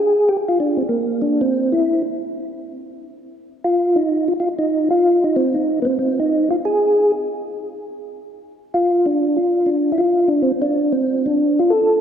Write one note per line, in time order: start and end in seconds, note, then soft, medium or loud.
0.00 0.29 G#4 medium
0.29 0.37 G4 medium
0.48 0.58 F4 medium
0.60 0.79 D4 medium
0.77 0.83 C4 medium
0.89 1.22 A#3 medium
1.22 1.41 D4 medium
1.41 1.74 C4 medium
1.72 2.02 E4 medium
3.64 3.97 F4 medium
3.96 4.29 D#4 medium
4.28 4.33 F4 medium
4.40 4.49 F4 medium
4.59 4.89 D#4 medium
4.91 5.24 F4 loud
5.24 5.36 D#4 medium
5.36 5.56 C4 medium
5.54 5.80 D#4 medium
5.82 5.87 B3 medium
5.82 5.98 C4 medium
5.99 6.19 C4 medium
6.20 6.49 D#4 medium
6.51 6.56 F4 medium
6.65 7.12 G#4 loud
8.74 9.07 F4 medium
9.06 9.38 D4 medium
9.36 9.70 F4 medium
9.66 9.92 D4 medium
9.92 10.01 E4 medium
9.98 10.29 F4 medium
10.28 10.42 D4 medium
10.42 10.52 C4 medium
10.62 10.93 D4 medium
10.92 11.27 C4 medium
11.26 11.60 D4 medium
11.59 11.72 F4 medium
11.70 12.01 A4 medium